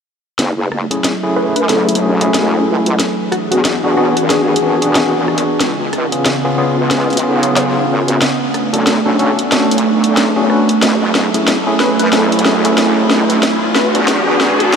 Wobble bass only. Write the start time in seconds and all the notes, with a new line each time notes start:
0.39 F#1
1.56 F#2
1.69 F#1
2.01 E1
2.67 C#2
3.51 E2
3.64 E2
4.17 G#1
5.14 G#1
5.60 C#2
6.77 C#2
6.91 C#2
7.23 B1
7.88 G#1
8.73 B1
8.86 B1
9.71 B1
10.03 B1
10.82 F#1
11.99 F#2
12.13 F#1
12.45 E1
13.10 C#2
13.95 E2
14.08 E2
14.60 G#1